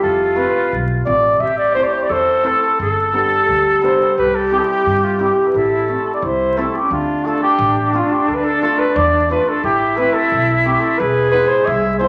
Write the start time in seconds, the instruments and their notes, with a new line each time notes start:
0.02 upright bass F2, flute F4, cornet A4
0.35 hammered dulcimer A3 C4 F4, cornet B4
0.72 upright bass B1
1.05 upright bass A1, hammered dulcimer A3 C4 F4, cornet D5
1.40 upright bass A1, flute G4, cornet E5
1.59 cornet D5
1.75 hammered dulcimer A3 C4 E4, cornet C5
1.84 cornet D5
1.94 cornet C5
2.03 cornet D5
2.09 upright bass E2, flute A4, cornet C5
2.43 hammered dulcimer A3 C4 E4, cornet A4
2.79 upright bass G1, flute A4, cornet A4
3.13 hammered dulcimer G3 B3 D4, cornet A4
3.48 upright bass D2
3.82 hammered dulcimer G3 B3 D4, cornet C5
4.17 upright bass C2, flute G4, cornet B4
4.35 cornet A4
4.50 hammered dulcimer G3 C4 E4, cornet G4
4.59 cornet A4
4.67 cornet G4
4.86 upright bass G2
5.04 cornet F4
5.19 hammered dulcimer G3 C4 E4, cornet G4
5.47 cornet B4
5.54 upright bass A1, flute E4, cornet A4
5.88 hammered dulcimer A3 C4 E4
6.14 cornet D5
6.22 upright bass C2, flute E4, cornet C5
6.57 hammered dulcimer A3 C4 E4, cornet A4
6.76 cornet G4
6.83 flute C#4
6.90 upright bass D2, flute D4, cornet F4
7.25 hammered dulcimer A3 D4 F4, cornet A4
7.43 cornet G4
7.58 upright bass A1
7.93 hammered dulcimer A3 D4 F4, cornet F4
8.12 cornet G4
8.28 upright bass D2, cornet A4
8.34 cornet B4
8.44 cornet A4
8.62 hammered dulcimer A3 D4 F4, cornet A4
8.79 cornet B4
8.96 upright bass E2, cornet D5
9.30 hammered dulcimer A3 D4 F4, cornet B4
9.49 cornet A4
9.63 upright bass A1, flute E4, cornet G4
9.97 hammered dulcimer A3 C4 E4, cornet B4
10.14 cornet A4
10.31 upright bass B1
10.65 hammered dulcimer A3 C4 E4, cornet G4
10.80 cornet A4
10.98 upright bass E1, flute G#4, cornet B4
11.32 hammered dulcimer G#3 B3 E4, cornet B4
11.48 cornet C5
11.66 upright bass C2, cornet E5
11.99 hammered dulcimer G#3 B3 E4, cornet C5